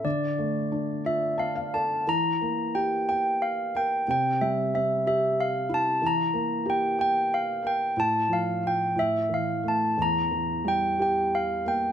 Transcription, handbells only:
0.05 1.69 D5 medium
1.06 1.41 E5 medium
1.39 1.74 F5 medium
1.74 2.08 A5 medium
2.09 2.77 A#5 medium
2.75 3.08 G5 medium
3.09 3.24 G5 medium
3.42 3.57 F5 medium
3.77 4.09 G5 medium
4.11 4.39 G5 medium
4.41 4.74 E5 medium
4.75 5.06 E5 medium
5.07 5.39 E5 medium
5.41 5.69 F5 medium
5.74 6.05 A5 medium
6.07 6.70 A#5 medium
6.70 7.00 G5 medium
7.01 7.33 G5 medium
7.34 7.66 F5 medium
7.67 7.99 G5 medium
8.00 8.32 A5 medium
8.33 8.65 F5 medium
8.67 8.96 G5 medium
8.99 9.32 E5 medium
9.34 9.67 F5 medium
9.68 10.01 A5 medium
10.02 10.69 A#5 medium
10.68 11.01 G5 medium
11.02 11.34 G5 medium
11.35 11.67 F5 medium
11.68 11.92 G5 medium

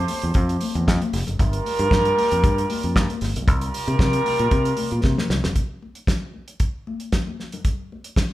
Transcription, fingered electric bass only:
0.23 0.33 E2 medium
0.35 0.56 F2 loud
0.75 0.88 E2 loud
0.88 0.98 F2 medium
1.13 1.24 F1 loud
1.27 1.37 F#1 medium
1.40 1.60 G1 loud
1.79 1.89 G2 loud
1.91 2.12 G2 medium
2.32 2.41 F2 loud
2.44 2.64 G2 loud
2.84 2.96 F2 medium
2.96 3.07 G2 loud
3.22 3.32 G1 medium
3.36 3.48 B1 medium
3.48 3.68 C2 loud
3.88 3.97 C3 medium
3.99 4.20 C3 medium
4.40 4.49 A#2 medium
4.52 4.72 C3 loud
4.92 5.01 A#2 medium
5.04 5.15 C3 loud
5.30 5.41 C2 medium
5.44 5.53 E1 medium

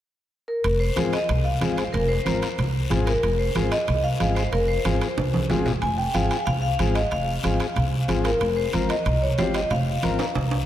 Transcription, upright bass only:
0.64 0.90 F1 loud
0.97 1.10 G#1 medium
1.29 1.55 C2 loud
1.61 1.87 G#1 medium
1.94 2.20 F1 loud
2.26 2.39 G#1 medium
2.59 2.85 C2 loud
2.91 3.17 G#1 medium
3.24 3.49 F1 loud
3.56 3.69 G#1 medium
3.88 4.14 C2 loud
4.21 4.47 G#1 medium
4.53 4.79 F1 loud
4.85 4.98 G#1 medium
5.18 5.44 C2 medium
5.50 5.76 G#1 medium
5.83 6.08 F1 loud
6.15 6.28 G#1 medium
6.47 6.73 C2 loud
6.79 7.05 G#1 medium
7.12 7.38 F1 loud
7.45 7.57 G#1 medium
7.77 8.03 C2 loud
8.09 8.35 G#1 medium
8.41 8.67 F1 medium
8.74 8.87 G#1 medium
9.06 9.32 C2 loud
9.38 9.64 G#1 medium
9.71 9.97 F1 loud
10.03 10.16 G#1 medium
10.36 10.61 C2 loud

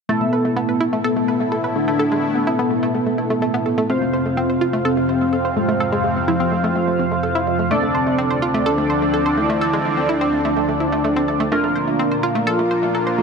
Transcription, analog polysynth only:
0.09 3.87 A3 medium
0.09 3.87 E4 medium
0.09 3.87 A4 medium
3.90 7.68 F4 medium
3.90 7.68 C5 medium
3.90 7.68 F5 medium
7.71 11.49 D4 medium
7.71 11.49 A4 medium
7.71 11.49 D5 medium
11.52 13.22 A#3 medium
11.52 13.22 F4 medium
11.52 13.22 A#4 medium

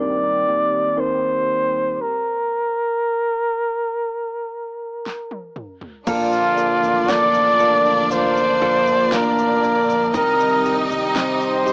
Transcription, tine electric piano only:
0.00 1.96 D#3 medium
0.00 0.97 C4 soft
0.00 0.97 D#4 soft
0.00 0.98 A#4 soft
0.97 1.96 C4 soft
0.97 1.97 D#4 soft
0.97 1.97 A#4 soft
6.07 6.57 A#3 medium
6.58 7.08 A#3 medium
7.09 7.59 A#3 medium
7.60 8.10 A#3 medium
8.11 8.61 A#3 medium
8.62 9.11 A#3 medium
9.12 9.62 A#3 medium
9.63 10.13 A#3 medium
10.14 11.14 C4 medium
10.65 11.65 G4 medium
11.16 11.73 C4 medium
11.67 11.73 G4 medium

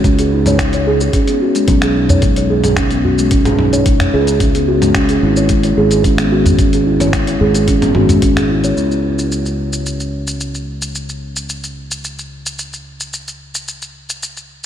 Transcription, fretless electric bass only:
0.04 1.08 C#2 loud
1.68 4.08 B1 loud
4.14 5.17 C#2 medium
5.23 5.72 G#1 medium
5.77 7.35 G#1 medium
7.41 7.90 G#1 medium
7.95 8.72 G#1 medium
8.77 14.66 C#2 medium

